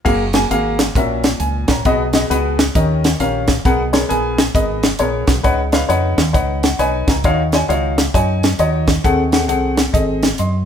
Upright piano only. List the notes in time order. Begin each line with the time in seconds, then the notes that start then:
0.05 A#3 F#4 G#4 F5
0.34 A#3 F#4 G#4 G#5
0.51 A#3 F#4 G#4 F5
0.96 A#2 C#4 F#4 A#4 E5
1.40 G#5
1.70 C#5 A#5
1.86 B2 B3 F#4 G#4 D#5
2.14 B3 F#4 G#4 D#5
2.30 B3 F#4 G#4 B4
2.75 D#3 C#4 G4 A#4 D#5
3.20 C#4 G4 A#4 F5
3.65 B2 B3 G#4 A#4 F#5
3.93 B3 G#4 A#4 C#5
4.09 B3 G#4 A#4 G#5
4.54 B3 G#4 A#4 D#5
4.99 B3 G#4 A#4 C#5
5.43 C#3 D#4 B4 C#5 F#5
5.73 D#4 B4 C#5 F5
5.89 D#4 B4 C#5 F#5
6.33 D#4 B4 C#5 F#5
6.63 F#5
6.79 D#4 B4 C#5 G#5
7.09 A#5
7.25 D#3 D#4 F#4 C#5 F5
7.54 D#4 F#4 C#5 G#5
7.69 D#4 F#4 C#5 F5
8.14 D#4 F#4 C#5 G#5
8.59 D#4 F#4 C#5 D#5
9.04 D#3 C4 G#4 A4 F#5
9.32 C4 G#4 A4 F#5
9.48 C4 G#4 A4 F#5
9.92 C4 G#4 A4 D#5
10.39 D#5 C6